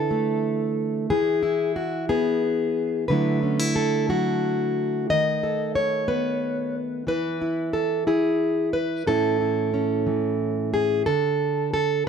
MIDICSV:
0, 0, Header, 1, 2, 480
1, 0, Start_track
1, 0, Key_signature, 3, "major"
1, 0, Tempo, 664452
1, 793, Time_signature, 6, 3, 24, 8
1, 8730, End_track
2, 0, Start_track
2, 0, Title_t, "Steel-string acoustic guitar"
2, 0, Program_c, 0, 25
2, 0, Note_on_c, 0, 50, 56
2, 0, Note_on_c, 0, 52, 59
2, 0, Note_on_c, 0, 64, 48
2, 0, Note_on_c, 0, 69, 80
2, 77, Note_on_c, 0, 57, 59
2, 766, Note_off_c, 0, 50, 0
2, 788, Note_off_c, 0, 52, 0
2, 790, Note_off_c, 0, 69, 0
2, 793, Note_off_c, 0, 57, 0
2, 796, Note_on_c, 0, 52, 64
2, 796, Note_on_c, 0, 68, 86
2, 1027, Note_off_c, 0, 64, 0
2, 1030, Note_on_c, 0, 64, 62
2, 1269, Note_off_c, 0, 68, 0
2, 1271, Note_on_c, 0, 66, 65
2, 1508, Note_off_c, 0, 66, 0
2, 1511, Note_on_c, 0, 68, 77
2, 1512, Note_on_c, 0, 59, 52
2, 1750, Note_off_c, 0, 64, 0
2, 2204, Note_off_c, 0, 59, 0
2, 2223, Note_off_c, 0, 68, 0
2, 2226, Note_on_c, 0, 71, 81
2, 2235, Note_off_c, 0, 52, 0
2, 2237, Note_on_c, 0, 50, 62
2, 2243, Note_on_c, 0, 54, 39
2, 2248, Note_on_c, 0, 57, 39
2, 2256, Note_on_c, 0, 64, 44
2, 2475, Note_off_c, 0, 64, 0
2, 2478, Note_on_c, 0, 61, 42
2, 2596, Note_off_c, 0, 61, 0
2, 2596, Note_on_c, 0, 64, 35
2, 2711, Note_off_c, 0, 71, 0
2, 2714, Note_on_c, 0, 69, 70
2, 2950, Note_off_c, 0, 54, 0
2, 2953, Note_on_c, 0, 54, 54
2, 2956, Note_off_c, 0, 69, 0
2, 2960, Note_on_c, 0, 66, 82
2, 3648, Note_off_c, 0, 54, 0
2, 3652, Note_off_c, 0, 50, 0
2, 3680, Note_off_c, 0, 64, 0
2, 3681, Note_off_c, 0, 66, 0
2, 3683, Note_on_c, 0, 51, 62
2, 3685, Note_on_c, 0, 75, 96
2, 3925, Note_on_c, 0, 69, 44
2, 4154, Note_off_c, 0, 75, 0
2, 4157, Note_on_c, 0, 73, 90
2, 4390, Note_off_c, 0, 69, 0
2, 4392, Note_on_c, 0, 59, 58
2, 4393, Note_on_c, 0, 71, 81
2, 4874, Note_off_c, 0, 73, 0
2, 5083, Note_off_c, 0, 59, 0
2, 5087, Note_off_c, 0, 51, 0
2, 5106, Note_on_c, 0, 52, 58
2, 5108, Note_off_c, 0, 71, 0
2, 5109, Note_off_c, 0, 57, 0
2, 5112, Note_on_c, 0, 64, 39
2, 5117, Note_on_c, 0, 71, 96
2, 5354, Note_off_c, 0, 64, 0
2, 5357, Note_on_c, 0, 64, 42
2, 5584, Note_off_c, 0, 71, 0
2, 5587, Note_on_c, 0, 69, 71
2, 5826, Note_off_c, 0, 64, 0
2, 5828, Note_off_c, 0, 69, 0
2, 5829, Note_on_c, 0, 64, 55
2, 5833, Note_on_c, 0, 68, 81
2, 6305, Note_off_c, 0, 68, 0
2, 6308, Note_on_c, 0, 71, 89
2, 6519, Note_off_c, 0, 64, 0
2, 6544, Note_off_c, 0, 52, 0
2, 6548, Note_off_c, 0, 71, 0
2, 6549, Note_on_c, 0, 45, 66
2, 6553, Note_on_c, 0, 52, 44
2, 6555, Note_on_c, 0, 69, 89
2, 6560, Note_on_c, 0, 61, 45
2, 6564, Note_on_c, 0, 64, 45
2, 6789, Note_off_c, 0, 64, 0
2, 6797, Note_on_c, 0, 64, 42
2, 7026, Note_off_c, 0, 61, 0
2, 7034, Note_on_c, 0, 61, 38
2, 7262, Note_off_c, 0, 52, 0
2, 7271, Note_on_c, 0, 52, 49
2, 7753, Note_off_c, 0, 69, 0
2, 7756, Note_on_c, 0, 68, 80
2, 7967, Note_off_c, 0, 45, 0
2, 7969, Note_off_c, 0, 61, 0
2, 7971, Note_off_c, 0, 64, 0
2, 7988, Note_off_c, 0, 68, 0
2, 7991, Note_on_c, 0, 69, 101
2, 7996, Note_off_c, 0, 52, 0
2, 7998, Note_on_c, 0, 50, 65
2, 8469, Note_off_c, 0, 69, 0
2, 8478, Note_on_c, 0, 69, 92
2, 8690, Note_off_c, 0, 50, 0
2, 8717, Note_off_c, 0, 69, 0
2, 8730, End_track
0, 0, End_of_file